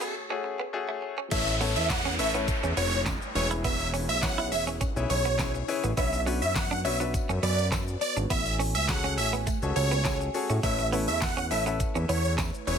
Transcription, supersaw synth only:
1.31 1.55 E5 loud
1.76 1.87 E5 medium
1.90 2.13 F#5 medium
2.19 2.31 E5 medium
2.77 3.01 C#5 medium
3.35 3.48 C#5 medium
3.64 3.88 E5 loud
4.09 4.20 E5 medium
4.23 4.46 F#5 medium
4.52 4.64 E5 medium
5.10 5.52 C#5 medium
5.97 6.21 E5 loud
6.42 6.53 E5 medium
6.55 6.79 F#5 medium
6.85 6.97 E5 medium
7.43 7.67 D5 medium
8.01 8.14 D5 medium
8.30 8.54 E5 loud
8.75 8.86 E5 medium
8.89 9.12 F#5 medium
9.18 9.30 E5 medium
9.76 10.18 C#5 medium
10.63 10.87 E5 loud
11.08 11.19 E5 medium
11.22 11.45 F#5 medium
11.51 11.63 E5 medium
12.09 12.33 C#5 medium
12.67 12.78 C#5 medium

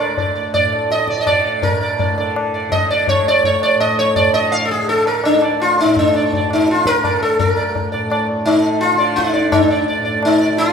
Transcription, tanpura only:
0.00 0.58 A2 medium
0.00 1.11 D3 medium
0.07 3.22 D2 medium
0.58 1.64 A2 medium
1.11 2.17 D3 medium
1.64 3.75 A2 medium
2.17 2.69 D3 medium
2.69 4.29 D3 medium
3.22 5.33 D2 medium
3.75 5.84 A2 medium
4.29 4.79 D3 medium
4.79 6.38 D3 medium
5.33 7.41 D2 medium
5.84 7.94 A2 medium
6.39 6.91 D3 medium
6.91 8.44 D3 medium
7.42 9.46 D2 medium
7.94 9.98 A2 medium
8.44 8.94 D3 medium
8.94 10.50 D3 medium
9.47 10.73 D2 medium
9.98 10.73 A2 medium
10.50 10.73 D3 medium

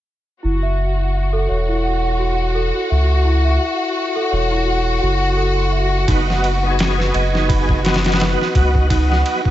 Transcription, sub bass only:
0.44 1.47 F#1 medium
1.50 2.72 E1 medium
2.91 3.58 C#2 medium
4.32 5.00 E1 medium
5.03 6.05 F#1 medium
6.08 7.11 F#1 loud
7.15 8.36 F#1 medium
8.55 9.23 C#2 medium

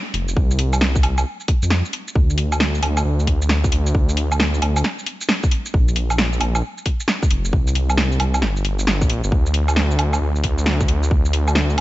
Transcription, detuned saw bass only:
0.14 0.35 F1 medium
0.37 1.03 C2 loud
1.03 1.25 C2 medium
1.63 1.83 F2 loud
2.15 2.82 D2 medium
2.83 3.04 D2 medium
3.05 3.94 D2 loud
3.95 4.61 D2 loud
4.62 4.83 D2 medium
5.74 6.40 A#1 loud
6.41 6.62 A#1 medium
7.31 7.52 F1 medium
7.53 8.19 C2 loud
8.20 8.44 C2 medium
8.42 9.03 G1 loud
9.01 9.22 A#1 loud
9.24 9.31 G1 loud
9.32 9.98 D2 loud
9.99 10.20 D2 medium
10.21 11.10 D2 loud
11.11 11.77 D2 loud

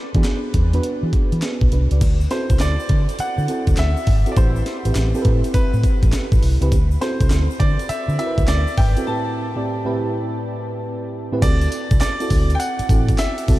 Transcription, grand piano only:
0.00 1.09 B4 medium
2.31 2.61 C5 medium
2.61 3.15 D5 medium
3.20 3.74 F#5 loud
3.79 4.34 E5 loud
4.32 4.37 D5 medium
4.37 5.21 C5 medium
5.54 6.09 B4 loud
7.01 7.62 C5 medium
7.60 7.90 D5 medium
7.89 8.17 E5 medium
8.19 8.49 E5 loud
8.48 8.79 D5 medium
8.78 9.05 G5 medium
9.07 10.80 A5 loud
11.42 11.99 D5 loud
12.01 12.51 D5 loud
12.55 12.60 G5 medium
12.59 13.20 F#5 loud
13.19 13.59 E5 loud

